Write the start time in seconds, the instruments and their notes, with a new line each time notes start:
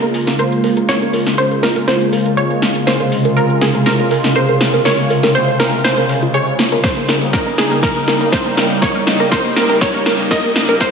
Already playing: analog synth pad C#3 G#3 A#3 F4, synth pluck A#4
0.03 synth arpeggio sound A#4, closed hi-hat
0.14 open hi-hat
0.27 synth arpeggio sound A#4, snare, closed hi-hat
0.39 synth arpeggio sound A#4, synth pluck C5, closed hi-hat
0.52 closed hi-hat
0.64 synth arpeggio sound A#4, open hi-hat
0.77 synth arpeggio sound A#4, closed hi-hat
0.89 synth pluck C#5, snare, closed hi-hat
1.02 synth arpeggio sound A#4, closed hi-hat
1.13 synth arpeggio sound A#4, open hi-hat
1.27 snare, closed hi-hat
1.38 synth arpeggio sound A#4, synth pluck C5, closed hi-hat
1.51 synth arpeggio sound A#4, closed hi-hat
1.63 synth pluck A#4, snare, open hi-hat
1.76 synth arpeggio sound A#4, closed hi-hat
1.88 synth arpeggio sound A#4, synth pluck C5, snare, closed hi-hat
2.01 closed hi-hat
2.13 synth arpeggio sound A#4, open hi-hat
2.26 synth arpeggio sound A#4, closed hi-hat
2.37 synth pluck C#5, closed hi-hat
2.51 synth arpeggio sound A#4, closed hi-hat
2.62 synth arpeggio sound A#4, snare, open hi-hat
2.75 closed hi-hat
2.87 analog synth pad C3, synth arpeggio sound A#4, synth pluck C5, snare, closed hi-hat
3.00 synth arpeggio sound A#4, closed hi-hat
3.12 open hi-hat
3.25 synth arpeggio sound A#4, closed hi-hat
3.36 synth pluck A#4, synth arpeggio sound A#4, closed hi-hat
3.50 closed hi-hat
3.61 synth pluck G#4, synth arpeggio sound A#4, snare, open hi-hat
3.75 synth arpeggio sound A#4, closed hi-hat
3.86 synth pluck A#4, snare, closed hi-hat
4.00 synth arpeggio sound A#4, closed hi-hat
4.11 synth arpeggio sound A#4, open hi-hat
4.24 snare, closed hi-hat
4.36 synth arpeggio sound A#4, synth pluck C5, closed hi-hat
4.49 synth arpeggio sound A#4, closed hi-hat
4.61 snare, open hi-hat
4.74 synth arpeggio sound A#4, closed hi-hat
4.85 synth arpeggio sound A#4, synth pluck C#5, snare, closed hi-hat
4.99 closed hi-hat
5.10 synth arpeggio sound A#4, open hi-hat
5.23 synth arpeggio sound A#4, snare, closed hi-hat
5.35 synth pluck C5, closed hi-hat
5.48 synth arpeggio sound A#4, closed hi-hat
5.60 synth pluck A#4, synth arpeggio sound A#4, snare, open hi-hat
5.73 closed hi-hat
5.84 synth arpeggio sound A#4, synth pluck C5, snare, closed hi-hat
5.98 synth arpeggio sound A#4, closed hi-hat
6.09 open hi-hat
6.22 synth arpeggio sound F4, closed hi-hat
6.34 synth arpeggio sound G#4, synth pluck C#5, closed hi-hat
6.47 closed hi-hat
6.59 synth arpeggio sound A#3, snare, open hi-hat
6.72 synth arpeggio sound A#4, closed hi-hat
6.84 analog synth pad G3 A#3 D#4, synth pluck C5, kick, snare, closed hi-hat
6.97 synth arpeggio sound A#4, closed hi-hat
7.09 synth arpeggio sound A#4, snare, open hi-hat
7.22 closed hi-hat
7.33 synth pluck A#4, synth arpeggio sound A#4, kick, snare, closed hi-hat
7.47 synth arpeggio sound A#4, closed hi-hat
7.58 synth pluck G#4, snare, open hi-hat
7.71 synth arpeggio sound A#4, closed hi-hat
7.83 synth pluck A#4, synth arpeggio sound A#4, kick, snare, closed hi-hat
7.96 closed hi-hat
8.08 synth arpeggio sound A#4, snare, open hi-hat
8.21 synth arpeggio sound A#4, closed hi-hat
8.32 synth pluck C5, kick, snare, closed hi-hat
8.46 synth arpeggio sound A#4, closed hi-hat
8.57 synth arpeggio sound A#4, snare, open hi-hat
8.70 closed hi-hat
8.82 synth arpeggio sound A#4, synth pluck C#5, kick, snare, closed hi-hat
8.95 synth arpeggio sound A#4, closed hi-hat
9.07 snare, open hi-hat
9.20 synth arpeggio sound A#4, closed hi-hat
9.32 synth arpeggio sound A#4, synth pluck C5, kick, snare, closed hi-hat
9.45 closed hi-hat
9.56 synth pluck A#4, synth arpeggio sound A#4, snare, open hi-hat
9.70 synth arpeggio sound A#4, closed hi-hat
9.81 synth pluck C#5, kick, snare, closed hi-hat
9.94 synth arpeggio sound A#4, closed hi-hat
10.06 synth arpeggio sound A#4, snare, open hi-hat
10.19 closed hi-hat
10.31 synth arpeggio sound A#4, synth pluck D#5, kick, snare, closed hi-hat
10.44 synth arpeggio sound A#4, closed hi-hat
10.56 snare, open hi-hat
10.69 synth arpeggio sound A#4, closed hi-hat
10.80 analog synth pad C3 D#4, synth arpeggio sound A#4, synth pluck C5, kick, snare, closed hi-hat